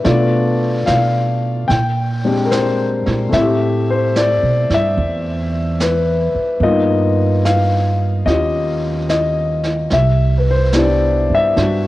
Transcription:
0.04 0.83 B2 medium
0.04 1.69 A3 soft
0.04 1.69 B3 soft
0.04 1.70 D4 soft
0.04 1.70 F4 soft
0.04 0.83 D5 medium
0.04 brush sweep soft
0.04 snare soft
0.86 1.65 B2 medium
0.86 1.71 F5 medium
0.86 snare soft
0.86 hi-hat pedal soft
1.68 3.03 A#2 medium
1.68 2.48 G5 medium
1.68 brush sweep soft
1.68 snare soft
2.24 3.33 G#3 soft
2.24 3.32 C4 soft
2.24 3.33 D4 soft
2.24 3.34 G4 soft
2.45 2.50 A#4 medium
2.51 3.16 C5 medium
2.51 snare soft
2.51 hi-hat pedal soft
3.06 3.31 A#2 medium
3.06 snare soft
3.29 4.38 A2 medium
3.29 6.59 A3 soft
3.29 brush sweep soft
3.29 snare soft
3.33 6.61 C4 soft
3.33 6.63 E4 soft
3.33 3.91 E5 medium
3.41 6.65 G4 soft
3.90 4.14 C5 medium
4.16 4.68 D5 medium
4.16 snare soft
4.16 hi-hat pedal soft
4.43 4.68 B2 soft
4.70 4.95 G2 medium
4.70 snare soft
4.74 5.77 E5 medium
4.97 6.31 E2 medium
4.97 brush sweep soft
5.80 6.59 B4 medium
5.80 snare soft
5.80 hi-hat pedal soft
6.35 muted upright bass stroke soft
6.60 8.21 G2 medium
6.60 9.91 A#3 soft
6.60 9.91 B3 soft
6.60 9.91 D#4 soft
6.60 8.27 F4 soft
6.60 7.47 D#5 medium
6.60 brush sweep soft
7.45 8.29 F5 medium
7.45 snare soft
7.45 hi-hat pedal soft
8.26 9.87 D#2 medium
8.26 9.91 C#4 soft
8.26 9.92 F4 soft
8.26 9.92 G4 soft
8.26 9.04 D#5 medium
8.26 brush sweep soft
8.26 snare soft
9.09 9.74 D#5 medium
9.09 snare soft
9.09 hi-hat pedal soft
9.64 snare soft
9.90 11.25 C2 medium
9.90 10.35 E5 medium
9.90 brush sweep soft
9.90 snare soft
10.38 10.47 B4 soft
10.51 10.76 C5 medium
10.73 11.87 B3 soft
10.73 11.54 D4 soft
10.73 11.87 E4 soft
10.73 11.87 G4 soft
10.73 snare soft
10.73 hi-hat pedal soft
10.79 11.33 D5 medium
11.30 11.54 G2 medium
11.35 11.87 E5 medium
11.56 11.87 G2 medium
11.56 11.87 D4 soft
11.56 11.87 F#4 soft
11.56 brush sweep soft
11.56 snare soft

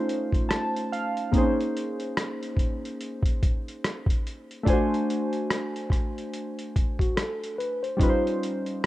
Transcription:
0.00 1.32 A3 medium
0.00 1.30 C#4 medium
0.00 1.31 D#4 medium
0.00 1.31 F4 medium
0.00 1.32 C5 medium
0.09 closed hi-hat medium
0.33 kick medium
0.33 closed hi-hat soft
0.49 0.88 A5 medium
0.49 cross-stick loud
0.49 closed hi-hat medium
0.77 closed hi-hat medium
0.93 1.31 F5 medium
0.93 closed hi-hat medium
1.17 closed hi-hat soft
1.32 4.62 A#3 medium
1.32 1.41 C4 soft
1.32 4.63 D#4 medium
1.32 kick loud
1.32 closed hi-hat medium
1.36 4.66 C#4 medium
1.36 4.64 G#4 medium
1.36 4.65 C5 medium
1.61 closed hi-hat soft
1.77 closed hi-hat medium
2.00 closed hi-hat soft
2.17 cross-stick loud
2.17 closed hi-hat medium
2.43 closed hi-hat soft
2.57 kick medium
2.57 closed hi-hat medium
2.85 closed hi-hat soft
3.01 closed hi-hat medium
3.23 kick medium
3.23 closed hi-hat medium
3.43 kick medium
3.43 closed hi-hat medium
3.68 closed hi-hat soft
3.84 cross-stick loud
3.84 closed hi-hat medium
4.06 kick loud
4.06 closed hi-hat medium
4.27 closed hi-hat medium
4.51 closed hi-hat soft
4.63 7.94 A3 medium
4.63 7.95 D4 medium
4.63 4.74 F4 soft
4.63 kick loud
4.63 closed hi-hat medium
4.68 7.97 C5 medium
4.68 7.97 G#5 medium
4.73 7.99 F#4 medium
4.94 closed hi-hat soft
5.10 closed hi-hat medium
5.33 closed hi-hat soft
5.50 cross-stick loud
5.50 closed hi-hat medium
5.76 closed hi-hat soft
5.90 kick medium
5.90 cross-stick soft
5.90 closed hi-hat medium
6.18 closed hi-hat soft
6.34 closed hi-hat medium
6.59 closed hi-hat medium
6.76 kick medium
6.76 closed hi-hat medium
6.99 7.16 F#4 medium
6.99 kick medium
6.99 closed hi-hat soft
7.16 7.56 A4 medium
7.16 cross-stick loud
7.16 closed hi-hat medium
7.44 closed hi-hat soft
7.58 7.82 B4 medium
7.58 closed hi-hat medium
7.83 8.22 C5 medium
7.83 closed hi-hat soft
7.97 8.86 G3 medium
7.97 8.86 C#4 medium
7.97 8.86 D#4 medium
7.97 kick loud
7.97 closed hi-hat medium
8.01 8.86 F4 medium
8.01 8.09 B4 medium
8.10 8.86 C5 medium
8.27 closed hi-hat soft
8.43 closed hi-hat medium
8.66 closed hi-hat soft

